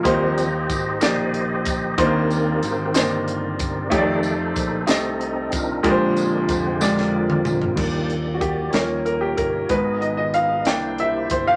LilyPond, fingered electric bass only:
\new Staff \with { instrumentName = "Fingered electric bass" } { \clef bass \time 6/8 \key ees \major \tempo 4. = 62 ees,4 aes,,8 bes,,4. | ees,4 aes,,8 g,,4. | f,4 bes,,8 c,4. | bes,,4 f,,8 f,4. |
ees,4. ees,4 g,,8 | aes,,4. c,4 g,,8 | }